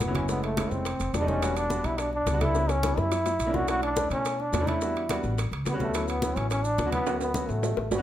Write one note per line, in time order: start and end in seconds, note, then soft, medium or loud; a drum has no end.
0.00 0.66 F#1 medium
0.00 0.16 B3 medium
0.00 high bongo medium
0.00 low bongo medium
0.00 high conga medium
0.00 high timbale medium
0.00 maracas medium
0.07 0.12 F#3 medium
0.07 0.13 B3 medium
0.07 0.13 C#4 medium
0.07 0.13 E4 medium
0.14 0.24 F#3 medium
0.14 0.25 B3 medium
0.14 0.29 C#4 medium
0.14 0.25 C#4 medium
0.14 0.25 E4 medium
0.14 high conga medium
0.14 high timbale medium
0.14 maracas soft
0.28 0.49 G#3 medium
0.28 0.49 A3 medium
0.28 0.42 B3 medium
0.28 0.49 C#4 medium
0.28 0.49 E4 medium
0.28 high bongo medium
0.28 high conga soft
0.28 maracas medium
0.43 0.73 A3 medium
0.43 high conga soft
0.43 high timbale medium
0.57 0.85 G#3 medium
0.57 0.85 A3 medium
0.57 0.86 C#4 medium
0.57 0.86 E4 medium
0.57 high bongo medium
0.57 high conga medium
0.57 high timbale medium
0.57 maracas medium
0.71 0.98 F1 medium
0.71 1.16 C4 medium
0.71 high bongo soft
0.71 high conga soft
0.71 maracas soft
0.85 high bongo medium
0.85 high conga soft
0.85 high timbale medium
0.85 maracas medium
0.99 1.13 F1 medium
0.99 high bongo soft
0.99 high conga soft
0.99 high timbale medium
0.99 maracas medium
1.14 1.79 E1 medium
1.14 1.30 D4 medium
1.14 high bongo medium
1.14 low bongo medium
1.14 high conga soft
1.14 high timbale medium
1.14 maracas medium
1.20 1.26 G3 medium
1.20 1.26 A3 medium
1.20 1.26 D4 medium
1.20 1.27 D#4 medium
1.28 1.38 G3 medium
1.28 1.38 A3 medium
1.28 1.59 C#4 medium
1.28 1.38 D4 medium
1.28 1.39 D#4 medium
1.28 high bongo soft
1.28 high conga medium
1.28 maracas soft
1.41 1.62 G3 medium
1.41 1.62 B3 medium
1.41 1.62 D4 medium
1.41 1.62 F#4 medium
1.41 high bongo medium
1.41 high conga soft
1.41 high timbale medium
1.41 maracas medium
1.56 1.87 D4 loud
1.56 high conga soft
1.56 high timbale medium
1.56 maracas medium
1.70 2.10 G3 medium
1.70 2.10 B3 medium
1.70 2.10 D4 medium
1.70 2.11 F#4 medium
1.70 high bongo medium
1.70 high conga medium
1.70 maracas medium
1.84 2.24 B1 medium
1.84 2.01 E4 medium
1.84 high conga soft
1.84 high timbale medium
1.84 maracas soft
1.98 2.13 D4 medium
1.98 high bongo medium
1.98 high conga soft
1.98 high timbale medium
1.98 maracas medium
2.13 2.43 D4 loud
2.13 high conga soft
2.26 2.92 C#2 medium
2.26 high bongo medium
2.26 low bongo medium
2.26 high conga medium
2.26 high timbale medium
2.26 maracas medium
2.33 2.38 G3 medium
2.33 2.39 B3 medium
2.33 2.39 D4 medium
2.33 2.39 F#4 medium
2.39 2.50 G3 medium
2.39 2.51 B3 medium
2.39 2.51 D4 medium
2.39 2.72 E4 loud
2.39 2.51 A4 medium
2.39 high conga medium
2.39 high timbale medium
2.39 maracas soft
2.53 2.74 G3 medium
2.53 2.74 B3 medium
2.53 2.75 C#4 medium
2.53 2.75 E4 medium
2.53 high bongo medium
2.53 high conga soft
2.53 maracas medium
2.69 3.00 C#4 medium
2.69 high bongo medium
2.69 high conga soft
2.69 high timbale medium
2.69 maracas medium
2.83 3.11 G3 medium
2.83 3.12 B3 medium
2.83 3.12 C#4 medium
2.83 3.12 E4 medium
2.83 high bongo medium
2.83 high conga medium
2.83 high timbale medium
2.83 maracas medium
2.97 3.37 F#2 medium
2.97 3.57 E4 medium
2.97 high bongo medium
2.97 high conga soft
2.97 maracas soft
3.12 low bongo medium
3.12 high conga soft
3.12 high timbale medium
3.12 maracas medium
3.25 low bongo loud
3.25 high conga soft
3.25 high timbale medium
3.25 maracas medium
3.39 4.05 B1 medium
3.39 high conga soft
3.39 high timbale medium
3.39 maracas medium
3.46 3.52 A#3 medium
3.46 3.52 C#4 medium
3.46 3.52 D4 medium
3.46 3.52 E4 medium
3.53 3.64 A#3 medium
3.53 3.64 C#4 medium
3.53 3.64 D4 medium
3.53 3.65 E4 medium
3.53 3.68 F#4 medium
3.53 low bongo medium
3.53 high conga medium
3.53 maracas soft
3.67 3.87 A3 medium
3.67 3.88 C#4 medium
3.67 3.88 D4 medium
3.67 3.88 E4 medium
3.67 3.82 F#4 loud
3.67 high bongo medium
3.67 high conga soft
3.67 high timbale medium
3.67 maracas medium
3.82 4.09 D4 loud
3.82 high conga soft
3.82 high timbale medium
3.96 4.36 A3 medium
3.96 4.36 C#4 medium
3.96 4.36 D4 medium
3.96 4.36 E4 medium
3.96 high bongo medium
3.96 high conga medium
3.96 maracas medium
4.10 4.50 B2 medium
4.10 4.42 C#4 medium
4.10 high conga soft
4.10 high timbale medium
4.10 maracas soft
4.25 high bongo medium
4.25 high conga soft
4.25 high timbale medium
4.25 maracas medium
4.40 4.70 D4 medium
4.40 high conga soft
4.53 5.18 E2 medium
4.53 high bongo medium
4.53 low bongo medium
4.53 high conga medium
4.53 high timbale medium
4.53 low timbale medium
4.53 maracas medium
4.60 4.65 A3 medium
4.60 4.65 C#4 medium
4.60 4.65 D4 medium
4.60 4.66 E4 medium
4.67 4.77 A3 medium
4.67 4.77 C#4 medium
4.67 4.78 D4 medium
4.67 5.24 E4 medium
4.67 4.78 E4 medium
4.67 high conga medium
4.67 high timbale medium
4.67 maracas soft
4.81 5.01 G3 medium
4.81 5.01 B3 medium
4.81 5.02 D4 medium
4.81 5.02 F#4 medium
4.81 high bongo medium
4.81 high conga soft
4.81 maracas medium
4.96 high conga soft
4.96 high timbale medium
5.09 5.38 G3 medium
5.09 5.38 B3 medium
5.09 5.38 D4 medium
5.09 5.38 F#4 medium
5.09 high bongo medium
5.09 high conga medium
5.09 high timbale medium
5.09 maracas medium
5.24 5.50 A1 medium
5.24 high bongo soft
5.24 high conga soft
5.24 maracas soft
5.38 high bongo medium
5.38 high conga soft
5.38 high timbale medium
5.38 maracas medium
5.51 5.65 C#2 medium
5.51 high bongo soft
5.51 high conga soft
5.51 high timbale medium
5.65 6.31 D2 medium
5.65 5.74 B3 medium
5.65 high bongo medium
5.65 low bongo medium
5.65 high conga soft
5.65 high timbale medium
5.65 maracas medium
5.72 5.78 G3 medium
5.72 5.78 B3 medium
5.72 5.78 C#4 medium
5.72 5.78 F#4 medium
5.80 5.90 G3 medium
5.80 6.10 A3 medium
5.80 5.90 B3 medium
5.80 5.90 C#4 medium
5.80 5.90 F#4 medium
5.80 high bongo soft
5.80 high conga medium
5.80 maracas soft
5.94 6.14 F#3 medium
5.94 6.14 B3 medium
5.94 6.14 C#4 medium
5.94 6.14 E4 medium
5.94 high bongo medium
5.94 high conga soft
5.94 high timbale medium
5.94 maracas medium
6.08 6.38 B3 medium
6.08 high conga soft
6.08 high timbale medium
6.08 maracas medium
6.22 6.61 F#3 medium
6.22 6.62 B3 medium
6.22 6.62 C#4 medium
6.22 6.62 E4 medium
6.22 high bongo medium
6.22 high conga medium
6.22 maracas medium
6.36 6.76 A1 medium
6.36 6.50 C#4 medium
6.36 high conga soft
6.36 high timbale medium
6.36 maracas soft
6.50 6.66 C#4 loud
6.50 high bongo medium
6.50 high conga soft
6.50 high timbale medium
6.50 maracas medium
6.64 6.91 D4 loud
6.64 high conga soft
6.64 maracas medium
6.78 7.44 D2 medium
6.78 high bongo medium
6.78 low bongo medium
6.78 high conga medium
6.78 high timbale medium
6.78 maracas medium
6.86 6.90 F#3 medium
6.86 6.90 B3 medium
6.86 6.91 C#4 medium
6.86 6.91 F#4 medium
6.91 7.02 F#3 medium
6.91 7.02 B3 medium
6.91 7.19 B3 loud
6.91 7.02 C#4 medium
6.91 7.03 E4 medium
6.91 high conga medium
6.91 high timbale medium
6.91 maracas soft
7.06 7.26 F#3 medium
7.06 7.27 B3 medium
7.06 7.27 C#4 medium
7.06 7.27 F#4 medium
7.06 high bongo medium
7.06 high conga soft
7.06 high timbale medium
7.06 maracas medium
7.20 7.50 B3 medium
7.20 high conga soft
7.20 high timbale medium
7.20 maracas medium
7.34 7.74 F#3 medium
7.34 7.75 B3 medium
7.34 7.75 C#4 medium
7.34 7.75 F#4 medium
7.34 high bongo medium
7.34 high conga medium
7.34 maracas medium
7.49 7.75 A1 medium
7.49 7.91 A3 medium
7.49 high bongo soft
7.49 high conga soft
7.49 maracas soft
7.63 high bongo medium
7.63 high conga soft
7.63 low timbale medium
7.63 maracas medium
7.77 7.90 A1 medium
7.77 high bongo medium
7.77 high conga soft
7.91 8.02 G1 medium
7.91 7.98 B3 medium
7.91 7.97 F#4 medium
7.91 high bongo medium
7.91 high conga soft
7.91 low timbale loud
7.91 maracas medium
7.97 8.02 F#3 medium
7.97 8.02 B3 medium
7.97 8.02 C#4 medium
7.97 8.02 F#4 medium